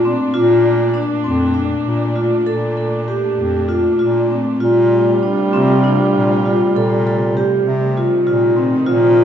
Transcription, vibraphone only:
0.05 C4
0.34 F4
0.94 D4
1.24 C4
1.54 D4
2.16 F4
2.47 A4
2.77 A4
3.08 G4
3.69 F4
3.99 F4
4.30 C4
4.60 F4
5.23 D4
5.53 C4
5.84 D4
6.45 F4
6.76 A4
7.07 A4
7.37 G4
7.97 F4
8.27 F4
8.57 C4
8.86 F4

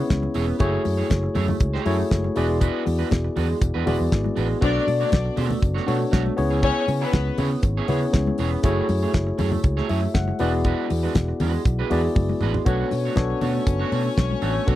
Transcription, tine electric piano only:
Already playing: B3 C#4 E4 G#4 C#5
0.59 A3 E4 F#4 G#4 C#5
1.85 A3 E4 F#4 G#4 C#5
2.36 B3 E4 F#4 G#4 D5
3.86 B3 E4 F#4 G#4 D5
4.61 B3 D4 F#4 A4 C5
4.69 D5
5.87 B3 D4 F#4 A4 C#5
6.37 B3 C#4 E4 G#4 C#5
7.88 B3 C#4 E4 G#4 C#5
8.63 A3 E4 F#4 G#4 C#5
9.89 E5
10.14 F#5
10.39 B3 E4 F#4 G#4 D5
11.90 B3 E4 F#4 G#4 D5
12.65 B3 D4 F#4 A4 C#5
13.16 B3 D4 F#4 A4 C#5
14.67 B3 D4 F#4 A4 C#5

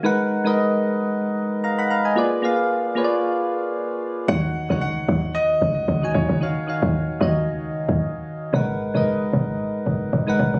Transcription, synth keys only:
0.03 G#3 D#4 A#4 B4 F#5
0.44 G#3 D#4 A#4 B4 D#5
1.64 F5 A#5
1.79 F#5 B5
1.90 F5 A#5
2.05 D#5 G#5
2.16 A#3 F4 G#4 B4 D5
2.42 A#3 F4 G#4 B4 F5
2.95 A#3 F4 G#4 B4 C#5
3.04 D5
4.28 D#3 D#4 F#4 C#5 F#5
4.69 D#3 D#4 F#4 C#5 F#5
6.02 D#3 D#4 F#4 C#5 G#5
6.40 D#3 D#4 F#4 C#5 F5
6.67 D#3 D#4 F#4 C#5 F5
7.20 D#3 D#4 F#4 C#5 D#5
8.53 G#3 D#4 A#4 B4 F#5
8.94 G#3 D#4 A#4 B4 D#5
10.27 G#3 D#4 A#4 B4 F#5

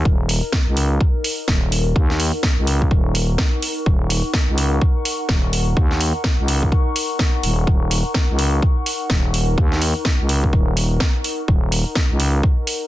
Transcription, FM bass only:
0.05 D#1
0.67 C#2
1.48 D#1
1.96 D#2
2.58 C#2
2.91 D#1
3.86 D#1
4.48 C#2
5.29 D#1
5.77 D#2
6.39 C#2
7.43 D#1
7.67 D#1
8.29 C#2
9.10 D#1
9.58 D#2
10.20 C#2
10.53 D#1
11.48 D#1
12.10 C#2

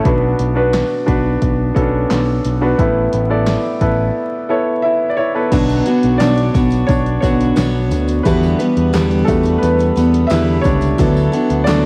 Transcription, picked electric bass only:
0.05 B1
0.39 B1
1.08 B1
1.42 B1
1.76 B1
2.11 B1
2.45 B1
2.79 A1
3.13 A1
3.81 A1
5.52 B1
6.04 B1
6.21 B1
6.55 B1
6.89 B1
7.23 B1
7.57 B1
7.92 D2
8.26 E2
8.77 E2
8.94 E2
9.28 E2
9.63 E2
9.97 E2
10.31 E2
10.65 C#2
10.99 D2
11.50 D2
11.68 D2

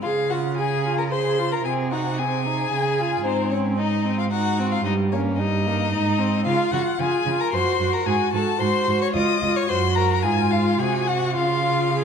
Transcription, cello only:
0.03 C#3
1.65 C3
2.72 C#3
3.25 G#2
4.85 G2
5.92 G#2
6.46 C#3
6.72 C#3
6.99 C#3
7.26 C#3
7.53 F#2
7.80 F#2
8.06 G#2
8.34 G#2
8.61 G#2
8.88 G#2
9.15 C#2
9.42 C#2
9.69 F#2
10.23 G#2
10.79 C3
11.35 C#3

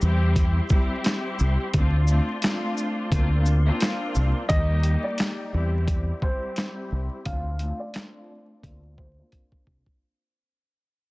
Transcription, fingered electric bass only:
0.02 E2
1.40 C2
1.74 D2
3.12 D2
4.16 C2
4.50 D#2
5.54 E2
6.92 C2
7.26 D2
8.64 D2
9.67 C2

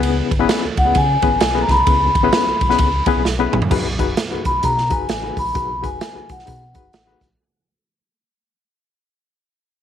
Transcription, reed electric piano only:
Already playing: C#3 B3 C#4 E4 G#4 B4
0.39 B3 C#4 E4 G#4 B4
0.85 B3 C#4 E4 G#4 B4
1.22 B3 C#4 E4 G#4 B4
1.54 B3 C#4 E4 G#4 B4
1.69 C#3
1.86 B3 C#4 E4 G#4 B4
2.23 B3 C#4 E4 G#4 B4
2.69 B3 C#4 E4 G#4 B4
3.07 B3 C#4 E4 G#4 B4
3.39 B3 C#4 E4 G#4 B4
3.71 B2 D#4 F#4 G#4 B4
3.99 D#4 F#4 G#4 B4
4.31 D#4 F#4 G#4 B4
4.62 D#4 F#4 G#4 B4
4.90 D#4 F#4 G#4 B4
5.22 D#4 F#4 G#4 B4
5.54 B2 D#4 F#4 G#4 B4
5.82 D#4 F#4 G#4 B4
6.14 D#4 F#4 G#4 B4
6.46 D#4 F#4 G#4 B4
6.74 D#4 F#4 G#4 B4
7.06 D#4 F#4 G#4 B4

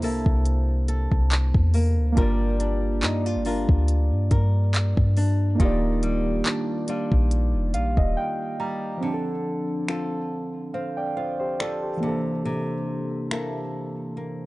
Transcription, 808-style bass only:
0.03 C2
0.26 C2
1.12 C2
1.55 E2
1.97 D2
2.17 G1
3.03 G2
3.36 G1
3.69 D2
4.11 G2
4.31 G2
4.97 G2
5.60 D#1
7.12 A#1
7.54 F1
7.74 A#1
7.97 D#1

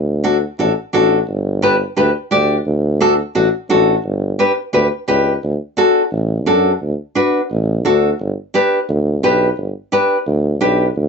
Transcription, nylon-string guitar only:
0.24 D4 F#4 A4
0.59 D4 F#4 A4
0.93 D4 F#4 A4
1.62 D4 G4 B4
1.97 D4 G4 B4
2.31 D4 G4 D5
3.00 D4 F#4 A4
3.35 D4 F#4 A4
3.70 D4 F#4 A4
4.39 D4 G4 B4
4.73 D4 G4 B4
5.08 D4 G4 B4
5.77 D4 F#4 A4
6.46 D4 F#4 A4
7.15 D4 F#4 B4
7.85 D4 F#4 A4
8.54 D4 G4 B4
9.23 D4 G4 B4
9.92 D4 G4 B4
10.61 D4 G4 B4

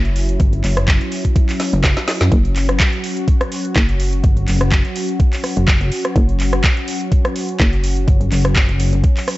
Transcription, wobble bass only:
0.40 G1
0.64 F#1
1.73 F#1
2.21 F#2
4.24 G1
4.48 F#1
5.57 F#1
8.08 G1
8.32 F#1
8.69 F#1

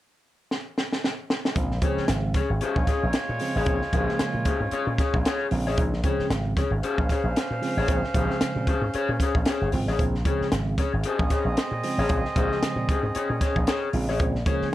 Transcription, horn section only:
2.61 G#3 F4 C#5
6.82 C#4 C5 F5
11.04 C4 G#4 D#5

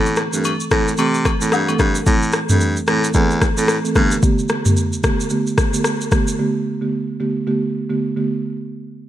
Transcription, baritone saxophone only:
Already playing: A2
0.33 G2
0.71 A2
0.98 C3
1.41 A2
1.52 G2
1.79 G2
2.07 A2
2.49 G2
2.88 A2
3.15 E2
3.57 A2
3.96 G2

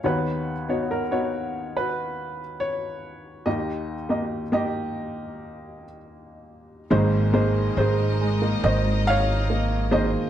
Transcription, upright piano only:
0.04 D#2 D#3 B3 D#4 F#4 B4 C#5
0.69 B3 D#4 F#4 C#5
0.91 A#4
1.11 B3 D#4 F#4 C#5
1.77 F#4 B4
2.60 C#5
3.46 D#2 D#3 A#3 D#4 G4 D#5
4.09 A#3 D#4 G4 D#5
4.52 A#3 D#4 G4 D#5
6.90 G#1 G#2 A#3 D#4 G#4 C5
7.33 A#3 D#4 G#4 C5
7.78 G#4 C5
8.64 C5 D#5
9.07 C#5 F5
9.91 A#3 D#4 G#4 C5 D#5

